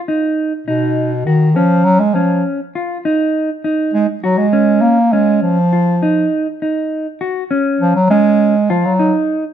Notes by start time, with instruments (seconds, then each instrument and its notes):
0.08 clean electric guitar D#4
0.67 bass clarinet B2, clean electric guitar D#4
1.25 bass clarinet D#3, clean electric guitar F#4
1.55 bass clarinet F3, clean electric guitar C#4
1.85 bass clarinet F#3
2.00 bass clarinet G#3
2.14 bass clarinet F3, clean electric guitar C#4
2.75 clean electric guitar F4
3.05 clean electric guitar D#4
3.64 clean electric guitar D#4
3.94 bass clarinet G#3
4.23 bass clarinet F#3, clean electric guitar F#4
4.38 bass clarinet G#3
4.53 clean electric guitar C#4
4.82 bass clarinet A#3
5.12 bass clarinet G#3, clean electric guitar C#4
5.42 bass clarinet F3
5.73 clean electric guitar F4
6.03 clean electric guitar D#4
6.62 clean electric guitar D#4
7.21 clean electric guitar F#4
7.51 clean electric guitar C#4
7.81 bass clarinet F3
7.96 bass clarinet F#3
8.10 bass clarinet G#3, clean electric guitar C#4
8.70 bass clarinet F3, clean electric guitar F4
8.85 bass clarinet F#3
8.99 clean electric guitar D#4